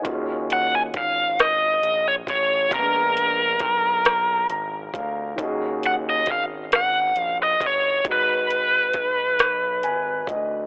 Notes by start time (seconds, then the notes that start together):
Already playing: D#5 G#5
0.02 D#2 D#3 C#4 F4, kick, closed hi-hat
0.07 F#4 G#4
0.50 F#5, closed hi-hat
0.75 G#5
0.94 G#1 F5, kick, closed hi-hat
1.39 D#5, cross-stick, closed hi-hat
1.82 A#1, closed hi-hat
2.08 C#5
2.27 A1 C#5, kick, closed hi-hat
2.69 A#1 A#2 G#3, kick, closed hi-hat
2.74 B3 C#4 A#4
2.80 D4
3.17 closed hi-hat
3.59 B1, kick, closed hi-hat
4.05 cross-stick, closed hi-hat
4.50 G#1 A#5, closed hi-hat
4.94 D2 F5, kick, closed hi-hat
5.36 D#2 D#3 C#4 D#4, kick, closed hi-hat
5.41 F#4 G#4
5.83 F#5, closed hi-hat
6.10 D#5
6.26 G#1, kick, closed hi-hat
6.32 F5
6.72 F#5, cross-stick, closed hi-hat
7.16 A#1 F5, closed hi-hat
7.43 D#5
7.60 G1, kick, closed hi-hat
7.66 C#5
8.03 G#1 G#3 D#4, kick, closed hi-hat
8.08 F#4 B4
8.50 closed hi-hat
8.93 B1, kick, closed hi-hat
9.39 cross-stick, closed hi-hat
9.83 G#1 G#5, closed hi-hat
10.27 D2 D#5, kick, closed hi-hat